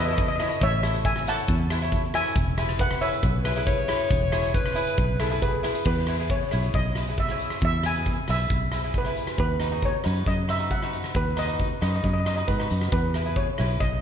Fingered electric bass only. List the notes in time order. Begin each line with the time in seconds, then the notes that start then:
Already playing: E2
0.62 A1
1.49 E2
2.36 E1
3.23 B1
4.11 E1
4.98 B1
5.86 E2
6.53 B1
6.74 B1
7.62 E2
8.29 B1
8.50 B1
9.39 D#2
10.06 F#2
10.26 F#2
11.15 D#2
11.82 F#2
12.04 F#2
12.48 G#2
12.71 F#2
12.92 E2
13.60 B1
13.81 B1